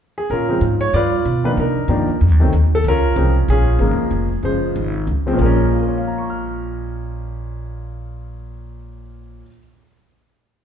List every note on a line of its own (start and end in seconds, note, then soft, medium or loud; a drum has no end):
0.18 0.30 G#4 medium
0.30 0.60 A#2 medium
0.30 0.91 C#4 medium
0.30 0.91 F4 medium
0.30 0.60 A#4 medium
0.49 0.60 C#3 medium
0.49 0.60 F3 medium
0.49 0.61 G#3 medium
0.49 0.61 C4 medium
0.61 0.92 G#2 medium
0.81 0.92 C#5 medium
0.93 1.24 G2 medium
0.93 1.54 F4 medium
0.93 1.44 B4 medium
0.93 1.42 D5 loud
1.26 1.56 B2 medium
1.44 1.56 D#3 medium
1.44 1.56 F3 medium
1.44 1.56 A#3 medium
1.44 1.57 D4 medium
1.44 1.50 B4 medium
1.57 1.88 C3 medium
1.57 1.89 D4 medium
1.57 2.19 D#4 medium
1.57 2.18 A#4 medium
1.88 2.07 G2 medium
1.88 2.07 D#3 medium
1.88 2.07 F3 medium
1.88 2.07 A#3 medium
1.88 2.07 D4 medium
2.08 muted upright bass stroke soft
2.21 2.31 F2 medium
2.31 2.42 D#2 medium
2.40 2.52 C2 medium
2.40 2.51 D#3 medium
2.40 2.52 F#3 medium
2.40 2.52 A3 medium
2.40 2.52 C4 medium
2.53 2.84 D#2 loud
2.75 2.85 A4 medium
2.84 3.15 C#2 medium
2.88 3.46 C#4 medium
2.88 3.47 F4 medium
2.88 3.34 A#4 loud
3.16 3.47 C2 loud
3.16 3.34 C#3 medium
3.16 3.34 F3 medium
3.16 3.34 G#3 medium
3.16 3.35 C4 medium
3.48 3.78 A#1 medium
3.48 5.05 C#4 medium
3.48 5.05 F4 medium
3.48 5.04 G#4 medium
3.79 3.98 G#1 medium
3.79 4.28 C#3 medium
3.79 4.28 F3 medium
3.79 4.28 G#3 medium
3.79 4.28 A#3 medium
3.99 muted upright bass stroke soft
4.11 4.42 F1 medium
4.43 4.74 F#1 medium
4.43 4.91 C#3 medium
4.43 4.92 F3 medium
4.43 4.92 G#3 medium
4.43 4.92 C5 medium
4.76 5.07 G#1 medium
5.07 5.38 C#2 medium
5.26 5.38 C#3 medium
5.26 5.36 F3 medium
5.26 5.38 G#3 medium
5.26 5.39 C4 medium
5.33 9.42 A#2 medium
5.33 9.44 F3 medium
5.39 9.41 A#1 medium
5.39 9.46 G#3 medium
5.39 5.79 A#4 medium
5.46 9.48 C#4 medium
5.72 9.41 F4 soft
5.80 9.45 A#4 soft
5.88 9.49 C#5 soft
5.98 9.54 F5 soft
6.07 9.59 A#5 soft
6.18 9.64 C#6 soft
6.30 9.70 F6 soft